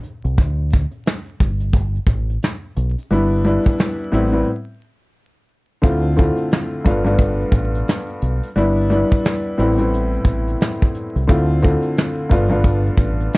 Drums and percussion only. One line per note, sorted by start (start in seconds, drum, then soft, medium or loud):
0.03 closed hi-hat medium
0.25 closed hi-hat medium
0.37 kick loud
0.37 closed hi-hat medium
0.72 kick medium
0.72 closed hi-hat medium
0.91 closed hi-hat medium
1.06 snare loud
1.06 closed hi-hat loud
1.26 closed hi-hat soft
1.40 kick medium
1.40 closed hi-hat medium
1.60 closed hi-hat medium
1.73 kick loud
1.73 closed hi-hat medium
1.95 closed hi-hat soft
2.07 kick medium
2.07 closed hi-hat medium
2.30 closed hi-hat medium
2.43 snare loud
2.43 closed hi-hat loud
2.76 closed hi-hat medium
2.98 closed hi-hat medium
3.10 closed hi-hat medium
3.31 closed hi-hat soft
3.45 closed hi-hat medium
3.64 kick medium
3.64 closed hi-hat medium
3.79 snare loud
3.79 closed hi-hat loud
3.99 closed hi-hat soft
4.13 closed hi-hat medium
4.33 closed hi-hat medium
5.83 kick loud
5.83 closed hi-hat medium
6.04 closed hi-hat soft
6.17 kick loud
6.17 closed hi-hat medium
6.37 closed hi-hat medium
6.52 snare loud
6.52 closed hi-hat loud
6.86 kick medium
6.86 closed hi-hat medium
7.05 closed hi-hat medium
7.19 kick medium
7.19 closed hi-hat medium
7.40 closed hi-hat soft
7.52 kick medium
7.52 closed hi-hat medium
7.75 closed hi-hat medium
7.88 snare medium
7.88 closed hi-hat loud
8.08 closed hi-hat soft
8.22 closed hi-hat medium
8.43 closed hi-hat medium
8.56 closed hi-hat medium
8.77 closed hi-hat soft
8.90 closed hi-hat medium
9.10 kick medium
9.10 closed hi-hat medium
9.24 snare loud
9.24 closed hi-hat loud
9.59 closed hi-hat medium
9.78 closed hi-hat medium
9.94 closed hi-hat medium
10.13 closed hi-hat soft
10.25 kick medium
10.25 closed hi-hat medium
10.48 closed hi-hat medium
10.61 snare loud
10.61 closed hi-hat loud
10.81 kick loud
10.81 closed hi-hat soft
10.95 closed hi-hat medium
11.16 closed hi-hat medium
11.29 kick loud
11.29 closed hi-hat medium
11.49 closed hi-hat soft
11.63 kick medium
11.63 closed hi-hat medium
11.82 closed hi-hat medium
11.97 snare loud
11.97 closed hi-hat loud
12.17 closed hi-hat soft
12.31 kick medium
12.31 closed hi-hat medium
12.51 closed hi-hat medium
12.64 kick loud
12.64 closed hi-hat medium
12.86 closed hi-hat soft
12.98 kick medium
12.98 closed hi-hat medium
13.21 closed hi-hat medium
13.33 snare loud
13.33 closed hi-hat loud